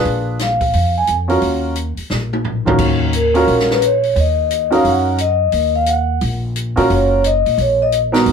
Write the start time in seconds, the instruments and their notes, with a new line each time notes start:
Already playing: grand piano D4 F4 G#4 B4
0.05 upright bass A#1, open hi-hat
0.39 vibraphone F5, snare, closed hi-hat
0.61 kick, open hi-hat
0.73 upright bass F2, open hi-hat
0.98 vibraphone G#5
1.07 upright bass F2, closed hi-hat
1.28 grand piano C#4 F4 F#4 A#4, open hi-hat
1.42 upright bass D#2, open hi-hat
1.75 closed hi-hat
1.97 muted upright bass stroke, open hi-hat
2.10 upright bass A#1, snare
2.33 high tom
2.45 floor tom
2.65 upright bass D2, grand piano D#3 C#4 F4 F#4 A#4, floor tom
2.78 upright bass D#2, kick, crash
3.13 vibraphone A#4, closed hi-hat
3.34 grand piano C#4 F4 F#4 A#4, open hi-hat
3.47 upright bass A#1, open hi-hat
3.60 snare
3.71 vibraphone B4, snare
3.82 vibraphone C#5, closed hi-hat
4.03 open hi-hat
4.16 upright bass D#2, open hi-hat
4.20 vibraphone D#5
4.50 closed hi-hat
4.71 grand piano C#4 D#4 F#4 A#4, vibraphone F5, open hi-hat
4.85 upright bass F#2, vibraphone F#5, open hi-hat
5.18 vibraphone D#5, closed hi-hat
5.52 upright bass D#2, open hi-hat
5.75 vibraphone F5
5.86 vibraphone F#5, closed hi-hat
6.21 upright bass A#1, open hi-hat
6.56 closed hi-hat
6.76 upright bass A#2, grand piano C#4 F4 F#4 A#4, open hi-hat
6.90 upright bass F#1, vibraphone C#5, open hi-hat
7.24 vibraphone D#5, closed hi-hat
7.46 upright bass A#2, open hi-hat
7.58 upright bass A#1, vibraphone C#5, open hi-hat
7.82 vibraphone D#5
7.92 closed hi-hat
8.12 grand piano B3 D#4 F#4 A#4, snare, open hi-hat
8.26 upright bass G#1, open hi-hat